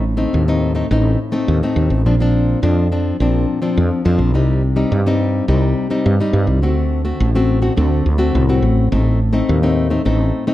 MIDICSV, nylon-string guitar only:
0, 0, Header, 1, 2, 480
1, 0, Start_track
1, 0, Tempo, 571973
1, 1725, Time_signature, 4, 2, 24, 8
1, 8844, End_track
2, 0, Start_track
2, 0, Title_t, "Nylon-string guitar"
2, 0, Program_c, 0, 24
2, 0, Note_on_c, 0, 45, 56
2, 143, Note_on_c, 0, 57, 60
2, 147, Note_on_c, 0, 60, 60
2, 152, Note_on_c, 0, 63, 64
2, 258, Note_off_c, 0, 45, 0
2, 278, Note_on_c, 0, 45, 57
2, 355, Note_off_c, 0, 57, 0
2, 357, Note_off_c, 0, 60, 0
2, 360, Note_off_c, 0, 63, 0
2, 403, Note_on_c, 0, 57, 67
2, 406, Note_on_c, 0, 60, 70
2, 411, Note_on_c, 0, 63, 73
2, 605, Note_off_c, 0, 57, 0
2, 607, Note_off_c, 0, 60, 0
2, 608, Note_off_c, 0, 63, 0
2, 627, Note_on_c, 0, 57, 62
2, 631, Note_on_c, 0, 60, 63
2, 637, Note_on_c, 0, 63, 61
2, 718, Note_off_c, 0, 57, 0
2, 720, Note_off_c, 0, 60, 0
2, 722, Note_off_c, 0, 63, 0
2, 737, Note_off_c, 0, 45, 0
2, 764, Note_on_c, 0, 45, 57
2, 769, Note_on_c, 0, 60, 57
2, 770, Note_on_c, 0, 57, 56
2, 776, Note_on_c, 0, 63, 64
2, 992, Note_off_c, 0, 57, 0
2, 992, Note_off_c, 0, 60, 0
2, 994, Note_off_c, 0, 63, 0
2, 1109, Note_on_c, 0, 57, 70
2, 1114, Note_on_c, 0, 60, 71
2, 1119, Note_on_c, 0, 63, 66
2, 1221, Note_off_c, 0, 45, 0
2, 1248, Note_on_c, 0, 45, 53
2, 1319, Note_off_c, 0, 57, 0
2, 1321, Note_off_c, 0, 60, 0
2, 1324, Note_off_c, 0, 63, 0
2, 1369, Note_on_c, 0, 57, 63
2, 1372, Note_on_c, 0, 60, 65
2, 1375, Note_on_c, 0, 63, 60
2, 1689, Note_off_c, 0, 57, 0
2, 1691, Note_off_c, 0, 60, 0
2, 1691, Note_off_c, 0, 63, 0
2, 1703, Note_off_c, 0, 45, 0
2, 1729, Note_on_c, 0, 46, 56
2, 1729, Note_on_c, 0, 53, 64
2, 1731, Note_on_c, 0, 60, 57
2, 1737, Note_on_c, 0, 62, 63
2, 1799, Note_off_c, 0, 53, 0
2, 1801, Note_off_c, 0, 60, 0
2, 1802, Note_off_c, 0, 62, 0
2, 1849, Note_on_c, 0, 53, 70
2, 1856, Note_on_c, 0, 60, 67
2, 1862, Note_on_c, 0, 62, 77
2, 2169, Note_off_c, 0, 53, 0
2, 2173, Note_off_c, 0, 60, 0
2, 2174, Note_off_c, 0, 62, 0
2, 2184, Note_off_c, 0, 46, 0
2, 2201, Note_on_c, 0, 53, 59
2, 2206, Note_off_c, 0, 53, 0
2, 2206, Note_on_c, 0, 53, 63
2, 2208, Note_on_c, 0, 60, 54
2, 2212, Note_on_c, 0, 62, 67
2, 2406, Note_off_c, 0, 53, 0
2, 2408, Note_off_c, 0, 60, 0
2, 2410, Note_off_c, 0, 62, 0
2, 2448, Note_on_c, 0, 53, 62
2, 2452, Note_on_c, 0, 60, 60
2, 2455, Note_on_c, 0, 62, 61
2, 2649, Note_off_c, 0, 53, 0
2, 2650, Note_off_c, 0, 60, 0
2, 2651, Note_off_c, 0, 62, 0
2, 2693, Note_on_c, 0, 46, 54
2, 2695, Note_on_c, 0, 53, 52
2, 2697, Note_on_c, 0, 60, 61
2, 2702, Note_on_c, 0, 62, 66
2, 3012, Note_off_c, 0, 53, 0
2, 3013, Note_off_c, 0, 60, 0
2, 3015, Note_off_c, 0, 62, 0
2, 3036, Note_on_c, 0, 53, 64
2, 3041, Note_on_c, 0, 60, 69
2, 3044, Note_on_c, 0, 62, 65
2, 3146, Note_off_c, 0, 46, 0
2, 3166, Note_off_c, 0, 53, 0
2, 3176, Note_on_c, 0, 53, 55
2, 3365, Note_off_c, 0, 60, 0
2, 3367, Note_off_c, 0, 62, 0
2, 3392, Note_off_c, 0, 53, 0
2, 3401, Note_on_c, 0, 53, 61
2, 3406, Note_on_c, 0, 62, 58
2, 3408, Note_on_c, 0, 60, 56
2, 3625, Note_off_c, 0, 53, 0
2, 3627, Note_off_c, 0, 60, 0
2, 3627, Note_off_c, 0, 62, 0
2, 3642, Note_on_c, 0, 48, 58
2, 3649, Note_on_c, 0, 55, 59
2, 3652, Note_on_c, 0, 60, 64
2, 3652, Note_on_c, 0, 63, 67
2, 3872, Note_off_c, 0, 55, 0
2, 3872, Note_off_c, 0, 60, 0
2, 3874, Note_off_c, 0, 63, 0
2, 3995, Note_on_c, 0, 55, 60
2, 4000, Note_on_c, 0, 60, 61
2, 4001, Note_on_c, 0, 63, 63
2, 4102, Note_off_c, 0, 48, 0
2, 4125, Note_on_c, 0, 43, 59
2, 4203, Note_off_c, 0, 55, 0
2, 4204, Note_off_c, 0, 60, 0
2, 4205, Note_off_c, 0, 63, 0
2, 4250, Note_on_c, 0, 55, 78
2, 4255, Note_on_c, 0, 60, 70
2, 4259, Note_on_c, 0, 63, 66
2, 4570, Note_off_c, 0, 55, 0
2, 4572, Note_off_c, 0, 60, 0
2, 4574, Note_off_c, 0, 63, 0
2, 4582, Note_off_c, 0, 43, 0
2, 4601, Note_on_c, 0, 55, 58
2, 4603, Note_on_c, 0, 48, 55
2, 4608, Note_on_c, 0, 60, 54
2, 4609, Note_on_c, 0, 63, 62
2, 4925, Note_off_c, 0, 55, 0
2, 4928, Note_off_c, 0, 60, 0
2, 4928, Note_off_c, 0, 63, 0
2, 4953, Note_on_c, 0, 55, 66
2, 4957, Note_on_c, 0, 60, 72
2, 4961, Note_on_c, 0, 63, 73
2, 5061, Note_off_c, 0, 48, 0
2, 5084, Note_on_c, 0, 43, 61
2, 5161, Note_off_c, 0, 55, 0
2, 5164, Note_off_c, 0, 60, 0
2, 5164, Note_off_c, 0, 63, 0
2, 5207, Note_on_c, 0, 55, 61
2, 5214, Note_on_c, 0, 60, 65
2, 5214, Note_on_c, 0, 63, 69
2, 5529, Note_off_c, 0, 55, 0
2, 5530, Note_off_c, 0, 60, 0
2, 5532, Note_off_c, 0, 63, 0
2, 5541, Note_off_c, 0, 43, 0
2, 5557, Note_on_c, 0, 50, 56
2, 5563, Note_on_c, 0, 57, 61
2, 5566, Note_on_c, 0, 60, 60
2, 5568, Note_on_c, 0, 66, 65
2, 5885, Note_off_c, 0, 57, 0
2, 5885, Note_off_c, 0, 60, 0
2, 5888, Note_off_c, 0, 66, 0
2, 5914, Note_on_c, 0, 57, 58
2, 5916, Note_on_c, 0, 60, 59
2, 5920, Note_on_c, 0, 66, 67
2, 6018, Note_off_c, 0, 50, 0
2, 6045, Note_on_c, 0, 45, 54
2, 6121, Note_off_c, 0, 57, 0
2, 6122, Note_off_c, 0, 60, 0
2, 6124, Note_off_c, 0, 66, 0
2, 6171, Note_on_c, 0, 57, 66
2, 6175, Note_on_c, 0, 60, 73
2, 6180, Note_on_c, 0, 66, 78
2, 6370, Note_off_c, 0, 57, 0
2, 6372, Note_off_c, 0, 60, 0
2, 6374, Note_off_c, 0, 66, 0
2, 6392, Note_on_c, 0, 57, 58
2, 6397, Note_on_c, 0, 60, 60
2, 6399, Note_on_c, 0, 66, 62
2, 6480, Note_off_c, 0, 57, 0
2, 6483, Note_off_c, 0, 60, 0
2, 6483, Note_off_c, 0, 66, 0
2, 6501, Note_off_c, 0, 45, 0
2, 6518, Note_on_c, 0, 50, 59
2, 6523, Note_on_c, 0, 57, 58
2, 6523, Note_on_c, 0, 60, 60
2, 6528, Note_on_c, 0, 66, 62
2, 6748, Note_off_c, 0, 57, 0
2, 6750, Note_off_c, 0, 60, 0
2, 6750, Note_off_c, 0, 66, 0
2, 6866, Note_on_c, 0, 57, 68
2, 6870, Note_on_c, 0, 60, 59
2, 6874, Note_on_c, 0, 66, 74
2, 6978, Note_off_c, 0, 50, 0
2, 7004, Note_on_c, 0, 45, 57
2, 7077, Note_off_c, 0, 57, 0
2, 7079, Note_off_c, 0, 60, 0
2, 7081, Note_off_c, 0, 66, 0
2, 7124, Note_on_c, 0, 57, 62
2, 7129, Note_on_c, 0, 60, 62
2, 7130, Note_on_c, 0, 66, 67
2, 7446, Note_off_c, 0, 57, 0
2, 7448, Note_off_c, 0, 60, 0
2, 7448, Note_off_c, 0, 66, 0
2, 7460, Note_off_c, 0, 45, 0
2, 7485, Note_on_c, 0, 57, 57
2, 7486, Note_on_c, 0, 45, 54
2, 7488, Note_on_c, 0, 60, 60
2, 7491, Note_on_c, 0, 63, 61
2, 7709, Note_off_c, 0, 57, 0
2, 7711, Note_off_c, 0, 60, 0
2, 7712, Note_off_c, 0, 63, 0
2, 7827, Note_on_c, 0, 57, 67
2, 7831, Note_on_c, 0, 60, 61
2, 7835, Note_on_c, 0, 63, 68
2, 7941, Note_off_c, 0, 45, 0
2, 7961, Note_on_c, 0, 45, 55
2, 8037, Note_off_c, 0, 57, 0
2, 8040, Note_off_c, 0, 60, 0
2, 8040, Note_off_c, 0, 63, 0
2, 8082, Note_on_c, 0, 57, 65
2, 8087, Note_on_c, 0, 60, 63
2, 8088, Note_on_c, 0, 63, 75
2, 8285, Note_off_c, 0, 57, 0
2, 8286, Note_off_c, 0, 60, 0
2, 8287, Note_off_c, 0, 63, 0
2, 8311, Note_on_c, 0, 57, 60
2, 8317, Note_on_c, 0, 60, 57
2, 8317, Note_on_c, 0, 63, 68
2, 8399, Note_off_c, 0, 57, 0
2, 8401, Note_off_c, 0, 60, 0
2, 8402, Note_off_c, 0, 63, 0
2, 8418, Note_off_c, 0, 45, 0
2, 8434, Note_on_c, 0, 45, 54
2, 8437, Note_on_c, 0, 57, 60
2, 8439, Note_on_c, 0, 60, 60
2, 8443, Note_on_c, 0, 63, 68
2, 8761, Note_off_c, 0, 57, 0
2, 8763, Note_off_c, 0, 60, 0
2, 8765, Note_off_c, 0, 63, 0
2, 8788, Note_on_c, 0, 57, 69
2, 8793, Note_on_c, 0, 60, 59
2, 8794, Note_on_c, 0, 63, 65
2, 8844, Note_off_c, 0, 45, 0
2, 8844, Note_off_c, 0, 57, 0
2, 8844, Note_off_c, 0, 60, 0
2, 8844, Note_off_c, 0, 63, 0
2, 8844, End_track
0, 0, End_of_file